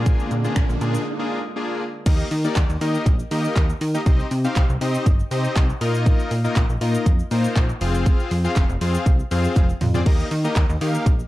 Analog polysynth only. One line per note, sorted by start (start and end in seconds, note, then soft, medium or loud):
0.00 0.31 A#3 medium
0.00 0.31 D4 medium
0.00 0.31 F4 medium
0.00 0.31 G#4 loud
0.44 0.64 A#3 medium
0.44 0.64 D4 medium
0.44 0.64 F4 medium
0.44 0.64 G#4 loud
0.81 1.01 A#3 medium
0.81 1.01 D4 medium
0.81 1.01 F4 medium
0.81 1.01 G#4 medium
1.19 1.39 A#3 medium
1.19 1.39 D4 medium
1.19 1.39 F4 medium
1.19 1.39 G#4 loud
1.56 1.82 A#3 medium
1.56 1.83 D4 medium
1.56 1.83 F4 medium
1.56 1.83 G#4 medium
2.06 2.26 A#3 medium
2.06 2.26 D#4 medium
2.06 2.26 G4 medium
2.06 2.26 A#4 medium
2.06 2.26 D#5 medium
2.44 2.64 A#3 medium
2.44 2.64 D#4 medium
2.44 2.64 G4 medium
2.44 2.64 A#4 medium
2.44 2.64 D5 loud
2.81 3.08 A#3 medium
2.81 3.08 D#4 medium
2.81 3.08 G4 medium
2.81 3.08 A#4 medium
2.81 3.08 D#5 medium
3.31 3.64 A#3 medium
3.31 3.65 D#4 medium
3.31 3.65 G4 medium
3.31 3.65 A#4 medium
3.31 3.65 D#5 loud
3.94 4.00 A#3 medium
3.94 4.01 D#4 medium
3.94 4.01 G4 medium
3.94 4.01 A#4 medium
3.94 4.01 D#5 loud
4.06 4.26 C4 medium
4.06 4.26 D#4 medium
4.06 4.26 G4 medium
4.06 4.26 C5 medium
4.06 4.26 D#5 medium
4.44 4.64 C4 medium
4.44 4.64 D#4 medium
4.44 4.64 G4 medium
4.44 4.64 C5 medium
4.44 4.64 F5 loud
4.81 5.08 C4 medium
4.81 5.08 D#4 medium
4.81 5.08 G4 medium
4.81 5.08 C5 medium
4.81 5.08 D#5 loud
5.31 5.65 C4 medium
5.31 5.65 D#4 medium
5.31 5.65 G4 medium
5.31 5.65 C5 medium
5.31 5.65 D#5 loud
5.81 6.31 A#3 medium
5.81 6.31 D#4 medium
5.81 6.31 F4 medium
5.81 6.31 A#4 medium
5.81 6.31 D#5 loud
6.44 6.64 A#3 medium
6.44 6.64 D#4 medium
6.44 6.64 F4 medium
6.44 6.64 A#4 medium
6.44 6.64 D#5 medium
6.81 7.08 A#3 medium
6.81 7.08 D#4 medium
6.81 7.08 F4 medium
6.81 7.08 A#4 medium
6.81 7.08 D#5 medium
7.31 7.65 A#3 medium
7.31 7.65 D#4 medium
7.31 7.65 F4 medium
7.31 7.65 A#4 medium
7.31 7.65 C5 loud
7.81 8.31 C4 medium
7.81 8.31 F4 medium
7.81 8.31 G#4 medium
7.81 8.31 C5 medium
7.81 8.31 F5 loud
8.44 8.64 C4 medium
8.44 8.64 F4 medium
8.44 8.64 G#4 medium
8.44 8.64 C5 medium
8.44 8.64 F5 loud
8.81 9.08 C4 medium
8.81 9.08 F4 medium
8.81 9.08 G#4 medium
8.81 9.08 C5 medium
8.81 9.08 F5 medium
9.31 9.64 C4 medium
9.31 9.65 F4 medium
9.31 9.65 G#4 medium
9.31 9.65 C5 medium
9.31 9.65 F5 medium
9.94 10.01 C4 medium
9.94 10.01 F4 medium
9.94 10.01 G#4 medium
9.94 10.01 C5 medium
9.94 10.01 D5 loud
10.06 10.26 A#3 medium
10.06 10.26 D#4 medium
10.06 10.26 G4 medium
10.06 10.26 A#4 medium
10.06 10.26 D#5 medium
10.44 10.64 A#3 medium
10.44 10.64 D#4 medium
10.44 10.64 G4 medium
10.44 10.64 A#4 medium
10.44 10.64 D#5 loud
10.81 11.08 A#3 medium
10.81 11.08 D#4 medium
10.81 11.08 G4 medium
10.81 11.08 A#4 medium
10.81 11.08 F5 medium